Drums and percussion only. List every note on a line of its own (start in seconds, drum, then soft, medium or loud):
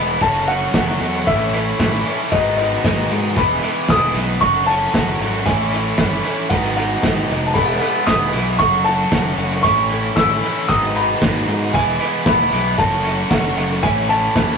0.21 kick loud
0.21 closed hi-hat medium
0.34 closed hi-hat soft
0.47 closed hi-hat medium
0.74 kick loud
0.74 snare loud
0.74 closed hi-hat medium
0.87 closed hi-hat soft
1.00 closed hi-hat medium
1.14 closed hi-hat soft
1.27 kick loud
1.27 closed hi-hat medium
1.54 closed hi-hat medium
1.80 kick loud
1.80 snare loud
1.80 closed hi-hat loud
1.93 closed hi-hat soft
2.06 closed hi-hat medium
2.32 kick loud
2.32 closed hi-hat loud
2.46 closed hi-hat soft
2.59 closed hi-hat medium
2.85 kick loud
2.85 snare loud
2.85 closed hi-hat loud
3.11 closed hi-hat medium
3.36 kick loud
3.36 closed hi-hat loud
3.63 closed hi-hat medium
3.88 kick loud
3.88 snare loud
3.88 closed hi-hat loud
4.15 closed hi-hat medium
4.41 kick loud
4.41 closed hi-hat medium
4.54 closed hi-hat soft
4.68 closed hi-hat medium
4.94 kick loud
4.94 snare loud
4.94 closed hi-hat medium
5.08 closed hi-hat soft
5.21 closed hi-hat medium
5.34 closed hi-hat soft
5.46 kick loud
5.46 closed hi-hat medium
5.73 closed hi-hat medium
5.98 kick loud
5.98 snare loud
5.98 closed hi-hat loud
6.11 closed hi-hat soft
6.24 closed hi-hat medium
6.50 kick loud
6.50 closed hi-hat medium
6.64 closed hi-hat soft
6.77 closed hi-hat medium
7.03 kick loud
7.03 snare loud
7.03 closed hi-hat loud
7.29 closed hi-hat medium
7.55 kick loud
7.55 crash medium
7.82 closed hi-hat medium
8.07 kick loud
8.07 snare loud
8.07 closed hi-hat loud
8.33 closed hi-hat medium
8.59 kick loud
8.59 closed hi-hat loud
8.72 closed hi-hat soft
8.86 closed hi-hat medium
9.12 kick loud
9.12 snare loud
9.12 closed hi-hat medium
9.25 closed hi-hat soft
9.38 closed hi-hat medium
9.51 closed hi-hat soft
9.64 kick loud
9.64 closed hi-hat medium
9.90 closed hi-hat medium
10.17 kick loud
10.17 snare loud
10.17 closed hi-hat loud
10.30 closed hi-hat soft
10.43 closed hi-hat medium
10.69 kick loud
10.69 closed hi-hat loud
10.83 closed hi-hat soft
10.95 closed hi-hat medium
11.22 kick loud
11.22 snare loud
11.22 closed hi-hat medium
11.48 closed hi-hat medium
11.74 kick loud
11.74 closed hi-hat loud
12.00 closed hi-hat medium
12.26 kick loud
12.26 snare loud
12.26 closed hi-hat loud
12.52 closed hi-hat medium
12.78 kick loud
12.78 closed hi-hat medium
12.92 closed hi-hat soft
13.05 closed hi-hat medium
13.31 kick loud
13.31 snare loud
13.31 closed hi-hat loud
13.44 closed hi-hat soft
13.57 closed hi-hat medium
13.70 closed hi-hat soft
13.83 kick loud
13.83 closed hi-hat medium
14.10 closed hi-hat medium
14.36 kick loud
14.36 snare loud
14.36 closed hi-hat loud
14.49 closed hi-hat soft